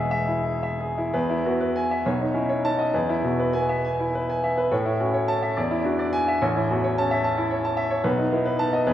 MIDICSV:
0, 0, Header, 1, 2, 480
1, 0, Start_track
1, 0, Key_signature, 4, "major"
1, 0, Tempo, 688863
1, 788, Time_signature, 6, 3, 24, 8
1, 788, Tempo, 601202
1, 3188, Tempo, 567644
1, 5588, Tempo, 538600
1, 7334, End_track
2, 0, Start_track
2, 0, Title_t, "Grand piano"
2, 0, Program_c, 0, 0
2, 0, Control_c, 0, 64, 127
2, 0, Note_on_c, 0, 28, 60
2, 0, Note_on_c, 0, 40, 64
2, 0, Note_on_c, 0, 47, 47
2, 0, Note_on_c, 0, 56, 45
2, 0, Note_on_c, 0, 64, 55
2, 0, Note_on_c, 0, 66, 46
2, 0, Note_on_c, 0, 68, 56
2, 0, Note_on_c, 0, 76, 70
2, 77, Note_off_c, 0, 76, 0
2, 77, Note_on_c, 0, 76, 62
2, 147, Note_off_c, 0, 68, 0
2, 193, Note_off_c, 0, 64, 0
2, 193, Note_on_c, 0, 64, 47
2, 217, Note_off_c, 0, 56, 0
2, 268, Note_off_c, 0, 76, 0
2, 314, Note_on_c, 0, 68, 53
2, 388, Note_off_c, 0, 64, 0
2, 438, Note_on_c, 0, 76, 56
2, 510, Note_off_c, 0, 68, 0
2, 559, Note_on_c, 0, 68, 59
2, 632, Note_off_c, 0, 76, 0
2, 681, Note_on_c, 0, 64, 51
2, 745, Note_off_c, 0, 68, 0
2, 759, Note_off_c, 0, 28, 0
2, 762, Note_off_c, 0, 40, 0
2, 790, Note_off_c, 0, 64, 0
2, 791, Note_on_c, 0, 40, 68
2, 792, Note_on_c, 0, 71, 62
2, 806, Control_c, 0, 64, 0
2, 807, Note_off_c, 0, 47, 0
2, 813, Note_off_c, 0, 66, 0
2, 920, Note_on_c, 0, 64, 58
2, 956, Control_c, 0, 64, 127
2, 990, Note_off_c, 0, 71, 0
2, 1050, Note_on_c, 0, 66, 49
2, 1051, Note_on_c, 0, 59, 45
2, 1117, Note_off_c, 0, 64, 0
2, 1167, Note_on_c, 0, 71, 61
2, 1169, Note_off_c, 0, 66, 0
2, 1288, Note_on_c, 0, 80, 68
2, 1360, Note_off_c, 0, 71, 0
2, 1411, Note_on_c, 0, 76, 58
2, 1436, Note_off_c, 0, 59, 0
2, 1478, Note_off_c, 0, 80, 0
2, 1502, Note_off_c, 0, 40, 0
2, 1526, Note_off_c, 0, 76, 0
2, 1528, Note_on_c, 0, 35, 68
2, 1528, Note_on_c, 0, 73, 54
2, 1536, Control_c, 0, 64, 0
2, 1643, Note_on_c, 0, 63, 53
2, 1668, Control_c, 0, 64, 127
2, 1711, Note_off_c, 0, 73, 0
2, 1754, Note_on_c, 0, 61, 51
2, 1754, Note_on_c, 0, 64, 48
2, 1828, Note_off_c, 0, 63, 0
2, 1872, Note_off_c, 0, 64, 0
2, 1875, Note_on_c, 0, 73, 60
2, 1998, Note_on_c, 0, 63, 49
2, 1999, Note_on_c, 0, 81, 78
2, 2064, Note_off_c, 0, 73, 0
2, 2108, Note_on_c, 0, 75, 58
2, 2134, Note_off_c, 0, 61, 0
2, 2186, Note_off_c, 0, 81, 0
2, 2210, Note_off_c, 0, 63, 0
2, 2211, Note_off_c, 0, 35, 0
2, 2228, Note_off_c, 0, 75, 0
2, 2231, Note_on_c, 0, 71, 56
2, 2233, Note_on_c, 0, 40, 69
2, 2243, Control_c, 0, 64, 0
2, 2354, Control_c, 0, 64, 127
2, 2354, Note_on_c, 0, 64, 61
2, 2420, Note_off_c, 0, 71, 0
2, 2472, Note_on_c, 0, 47, 46
2, 2473, Note_on_c, 0, 66, 44
2, 2540, Note_off_c, 0, 64, 0
2, 2588, Note_off_c, 0, 66, 0
2, 2595, Note_on_c, 0, 71, 54
2, 2706, Note_on_c, 0, 80, 71
2, 2709, Note_on_c, 0, 59, 50
2, 2782, Note_off_c, 0, 71, 0
2, 2832, Note_on_c, 0, 76, 55
2, 2853, Note_off_c, 0, 47, 0
2, 2899, Note_off_c, 0, 80, 0
2, 2957, Note_on_c, 0, 80, 56
2, 3024, Note_off_c, 0, 76, 0
2, 3077, Note_on_c, 0, 64, 52
2, 3095, Note_off_c, 0, 59, 0
2, 3146, Note_off_c, 0, 80, 0
2, 3198, Note_on_c, 0, 71, 56
2, 3269, Note_off_c, 0, 64, 0
2, 3323, Note_on_c, 0, 80, 59
2, 3393, Note_off_c, 0, 71, 0
2, 3442, Note_on_c, 0, 76, 53
2, 3514, Note_off_c, 0, 80, 0
2, 3559, Note_on_c, 0, 71, 56
2, 3633, Note_off_c, 0, 76, 0
2, 3646, Note_off_c, 0, 40, 0
2, 3677, Note_on_c, 0, 45, 64
2, 3677, Note_on_c, 0, 73, 55
2, 3679, Note_off_c, 0, 71, 0
2, 3695, Control_c, 0, 64, 0
2, 3792, Note_on_c, 0, 64, 59
2, 3834, Control_c, 0, 64, 127
2, 3869, Note_off_c, 0, 73, 0
2, 3917, Note_on_c, 0, 61, 54
2, 3919, Note_on_c, 0, 66, 46
2, 3988, Note_off_c, 0, 64, 0
2, 4035, Note_on_c, 0, 73, 56
2, 4039, Note_off_c, 0, 66, 0
2, 4157, Note_on_c, 0, 81, 74
2, 4230, Note_off_c, 0, 73, 0
2, 4277, Note_on_c, 0, 76, 59
2, 4304, Note_off_c, 0, 61, 0
2, 4351, Note_off_c, 0, 81, 0
2, 4378, Note_off_c, 0, 45, 0
2, 4397, Note_on_c, 0, 74, 59
2, 4399, Note_off_c, 0, 76, 0
2, 4400, Note_on_c, 0, 40, 68
2, 4416, Control_c, 0, 64, 0
2, 4516, Note_on_c, 0, 64, 60
2, 4569, Control_c, 0, 64, 127
2, 4590, Note_off_c, 0, 74, 0
2, 4632, Note_on_c, 0, 62, 50
2, 4635, Note_on_c, 0, 66, 48
2, 4708, Note_off_c, 0, 64, 0
2, 4755, Note_off_c, 0, 66, 0
2, 4755, Note_on_c, 0, 74, 62
2, 4871, Note_on_c, 0, 80, 83
2, 4945, Note_off_c, 0, 74, 0
2, 5001, Note_on_c, 0, 76, 63
2, 5015, Note_off_c, 0, 62, 0
2, 5064, Note_off_c, 0, 80, 0
2, 5093, Note_off_c, 0, 40, 0
2, 5114, Note_on_c, 0, 73, 59
2, 5117, Note_on_c, 0, 33, 70
2, 5118, Note_off_c, 0, 76, 0
2, 5128, Control_c, 0, 64, 0
2, 5240, Note_on_c, 0, 64, 56
2, 5274, Control_c, 0, 64, 127
2, 5307, Note_off_c, 0, 73, 0
2, 5358, Note_on_c, 0, 40, 53
2, 5360, Note_on_c, 0, 66, 48
2, 5429, Note_off_c, 0, 64, 0
2, 5473, Note_on_c, 0, 73, 60
2, 5476, Note_off_c, 0, 66, 0
2, 5595, Note_on_c, 0, 61, 55
2, 5595, Note_on_c, 0, 81, 77
2, 5659, Note_off_c, 0, 73, 0
2, 5708, Note_on_c, 0, 76, 67
2, 5731, Note_off_c, 0, 40, 0
2, 5781, Note_off_c, 0, 81, 0
2, 5826, Note_on_c, 0, 81, 69
2, 5895, Note_off_c, 0, 76, 0
2, 5946, Note_on_c, 0, 64, 58
2, 5968, Note_off_c, 0, 61, 0
2, 6012, Note_off_c, 0, 81, 0
2, 6063, Note_on_c, 0, 73, 58
2, 6130, Note_off_c, 0, 64, 0
2, 6187, Note_on_c, 0, 81, 60
2, 6248, Note_off_c, 0, 73, 0
2, 6295, Note_on_c, 0, 76, 67
2, 6370, Note_off_c, 0, 81, 0
2, 6416, Note_on_c, 0, 73, 64
2, 6486, Note_off_c, 0, 76, 0
2, 6500, Note_off_c, 0, 33, 0
2, 6536, Note_off_c, 0, 73, 0
2, 6536, Note_on_c, 0, 71, 60
2, 6537, Note_on_c, 0, 35, 73
2, 6551, Control_c, 0, 64, 0
2, 6660, Note_on_c, 0, 63, 57
2, 6685, Control_c, 0, 64, 127
2, 6732, Note_off_c, 0, 71, 0
2, 6786, Note_on_c, 0, 64, 49
2, 6787, Note_on_c, 0, 59, 53
2, 6854, Note_off_c, 0, 63, 0
2, 6905, Note_off_c, 0, 64, 0
2, 6906, Note_on_c, 0, 71, 62
2, 7028, Note_on_c, 0, 63, 49
2, 7029, Note_on_c, 0, 81, 76
2, 7097, Note_off_c, 0, 71, 0
2, 7152, Note_on_c, 0, 75, 64
2, 7171, Note_off_c, 0, 59, 0
2, 7220, Note_off_c, 0, 81, 0
2, 7244, Note_off_c, 0, 63, 0
2, 7245, Note_off_c, 0, 35, 0
2, 7270, Note_off_c, 0, 75, 0
2, 7274, Note_on_c, 0, 40, 78
2, 7274, Note_on_c, 0, 71, 66
2, 7280, Control_c, 0, 64, 0
2, 7334, Note_off_c, 0, 40, 0
2, 7334, Note_off_c, 0, 71, 0
2, 7334, End_track
0, 0, End_of_file